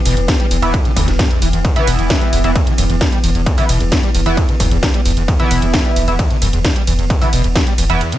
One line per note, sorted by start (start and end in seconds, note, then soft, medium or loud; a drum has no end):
0.00 8.18 E3 medium
0.00 8.18 B3 medium
0.06 0.16 E1 medium
0.06 0.15 B2 loud
0.06 open hi-hat loud
0.06 ride medium
0.17 0.28 E1 medium
0.17 0.21 E2 medium
0.17 closed hi-hat medium
0.28 0.38 E2 medium
0.28 kick loud
0.28 snare loud
0.28 closed hi-hat medium
0.28 ride medium
0.40 0.46 G3 loud
0.40 closed hi-hat medium
0.51 0.62 E1 loud
0.51 0.57 E2 medium
0.51 open hi-hat loud
0.51 ride medium
0.62 0.74 E1 medium
0.62 0.69 E2 medium
0.62 0.74 E3 loud
0.62 0.74 B3 loud
0.62 0.74 E4 loud
0.62 closed hi-hat medium
0.74 0.87 E2 medium
0.74 kick loud
0.74 closed hi-hat medium
0.74 ride medium
0.85 0.91 E3 loud
0.85 closed hi-hat medium
0.96 1.07 E1 medium
0.96 1.09 D2 loud
0.96 kick medium
0.96 open hi-hat loud
0.96 ride medium
1.08 1.19 E1 medium
1.08 1.12 E2 medium
1.08 snare soft
1.08 closed hi-hat medium
1.19 1.29 G2 medium
1.19 kick loud
1.19 snare loud
1.19 closed hi-hat medium
1.19 ride medium
1.31 1.40 E2 medium
1.31 closed hi-hat medium
1.42 1.53 E1 loud
1.42 1.48 E3 loud
1.42 open hi-hat loud
1.42 ride medium
1.53 1.64 E1 medium
1.53 1.60 E2 medium
1.53 closed hi-hat medium
1.65 1.78 E2 medium
1.65 kick loud
1.65 closed hi-hat medium
1.65 ride medium
1.76 1.82 E3 loud
1.76 2.41 E3 loud
1.76 2.41 B3 loud
1.76 2.41 E4 loud
1.76 closed hi-hat medium
1.87 1.98 E1 loud
1.87 1.97 B2 medium
1.87 open hi-hat loud
1.87 ride medium
1.99 2.10 E1 medium
1.99 2.02 E2 medium
1.99 closed hi-hat medium
2.10 2.20 E2 medium
2.10 kick loud
2.10 snare loud
2.10 closed hi-hat medium
2.10 ride medium
2.21 2.28 G3 loud
2.21 closed hi-hat medium
2.33 2.44 E1 medium
2.33 2.39 E2 medium
2.33 open hi-hat loud
2.33 ride medium
2.44 2.55 E1 medium
2.44 2.50 E2 medium
2.44 2.51 E3 medium
2.44 2.51 B3 medium
2.44 2.51 E4 medium
2.44 closed hi-hat medium
2.56 2.68 E2 medium
2.56 kick loud
2.56 closed hi-hat medium
2.56 ride medium
2.67 2.73 E3 loud
2.67 closed hi-hat medium
2.78 2.89 E1 medium
2.78 2.85 F#2 loud
2.78 open hi-hat loud
2.78 ride medium
2.90 3.01 E1 medium
2.90 2.96 E2 loud
2.90 closed hi-hat medium
3.01 3.10 E2 medium
3.01 kick loud
3.01 snare loud
3.01 closed hi-hat medium
3.01 ride medium
3.12 3.19 G3 loud
3.12 closed hi-hat medium
3.24 3.34 E1 loud
3.24 3.30 E2 medium
3.24 open hi-hat loud
3.24 ride medium
3.35 3.46 E1 medium
3.35 3.41 E2 medium
3.35 closed hi-hat medium
3.46 3.59 E2 medium
3.46 kick loud
3.46 closed hi-hat medium
3.46 ride medium
3.58 3.64 E3 loud
3.58 3.65 E3 loud
3.58 3.65 B3 medium
3.58 3.65 E4 loud
3.58 open hi-hat medium
3.69 3.80 E1 medium
3.69 3.79 B2 loud
3.69 open hi-hat loud
3.69 ride medium
3.80 3.92 E1 medium
3.80 3.84 E2 medium
3.80 closed hi-hat medium
3.92 4.01 E2 medium
3.92 kick loud
3.92 snare loud
3.92 closed hi-hat medium
3.92 ride medium
4.03 4.10 G3 loud
4.03 closed hi-hat medium
4.15 4.25 E1 loud
4.15 4.21 E2 medium
4.15 open hi-hat loud
4.15 ride medium
4.26 4.37 E1 medium
4.26 4.32 E2 medium
4.26 4.38 E3 loud
4.26 4.38 B3 medium
4.26 4.38 E4 loud
4.26 closed hi-hat medium
4.37 4.50 E2 medium
4.37 kick loud
4.37 closed hi-hat medium
4.37 ride medium
4.49 4.55 E3 loud
4.49 closed hi-hat medium
4.60 4.71 E1 medium
4.60 4.66 F#2 loud
4.60 kick medium
4.60 open hi-hat loud
4.60 ride medium
4.71 4.83 E1 medium
4.71 4.78 E2 loud
4.71 closed hi-hat medium
4.83 4.92 E2 medium
4.83 kick loud
4.83 snare loud
4.83 closed hi-hat medium
4.83 ride medium
4.94 5.00 G3 loud
4.94 closed hi-hat medium
5.06 5.16 E1 loud
5.06 5.12 E2 medium
5.06 open hi-hat loud
5.06 ride medium
5.17 5.28 E1 medium
5.17 5.23 E2 medium
5.17 closed hi-hat medium
5.28 5.41 E2 medium
5.28 kick loud
5.28 closed hi-hat medium
5.28 ride medium
5.40 6.05 E3 loud
5.40 5.46 E3 loud
5.40 6.05 B3 medium
5.40 6.05 E4 loud
5.40 closed hi-hat medium
5.51 5.62 E1 medium
5.51 5.60 B2 loud
5.51 open hi-hat loud
5.51 ride medium
5.62 5.73 E1 medium
5.62 5.66 E2 medium
5.62 closed hi-hat medium
5.74 5.83 E2 medium
5.74 kick loud
5.74 snare loud
5.74 closed hi-hat medium
5.74 ride medium
5.85 5.91 G3 loud
5.85 closed hi-hat medium
5.96 6.07 E1 loud
5.96 6.03 E2 medium
5.96 open hi-hat loud
5.96 ride medium
6.08 6.19 E1 medium
6.08 6.14 E2 medium
6.08 6.15 E3 medium
6.08 6.15 B3 medium
6.08 6.15 E4 medium
6.08 closed hi-hat medium
6.19 6.32 E2 medium
6.19 kick loud
6.19 closed hi-hat medium
6.19 ride medium
6.30 6.37 E3 loud
6.30 closed hi-hat medium
6.42 6.53 E1 medium
6.42 6.48 F#2 loud
6.42 open hi-hat loud
6.42 ride medium
6.53 6.64 E1 medium
6.53 6.60 E2 loud
6.53 closed hi-hat medium
6.65 6.74 E2 medium
6.65 kick loud
6.65 snare loud
6.65 closed hi-hat medium
6.65 ride medium
6.76 6.82 G3 loud
6.76 closed hi-hat medium
6.87 6.98 E1 loud
6.87 6.94 E2 medium
6.87 open hi-hat loud
6.87 ride medium
6.99 7.10 E1 medium
6.99 7.05 E2 medium
6.99 closed hi-hat medium
7.10 7.23 E2 medium
7.10 kick loud
7.10 closed hi-hat medium
7.10 ride medium
7.21 7.28 E3 loud
7.21 7.29 E3 loud
7.21 7.29 B3 medium
7.21 7.29 E4 loud
7.21 open hi-hat medium
7.33 7.44 E1 medium
7.33 7.42 B2 loud
7.33 open hi-hat loud
7.33 ride medium
7.44 7.55 E1 medium
7.44 7.48 E2 medium
7.44 closed hi-hat medium
7.56 7.65 E2 medium
7.56 kick loud
7.56 snare loud
7.56 closed hi-hat medium
7.56 ride medium
7.67 7.73 G3 loud
7.67 closed hi-hat medium
7.78 7.89 E1 loud
7.78 7.85 E2 medium
7.78 open hi-hat loud
7.78 ride medium
7.90 8.01 E1 medium
7.90 7.96 E2 medium
7.90 8.01 E3 loud
7.90 8.01 B3 medium
7.90 8.01 E4 loud
7.90 closed hi-hat medium
8.01 8.14 E2 medium
8.01 closed hi-hat medium
8.01 ride medium
8.12 8.18 E3 loud
8.12 closed hi-hat medium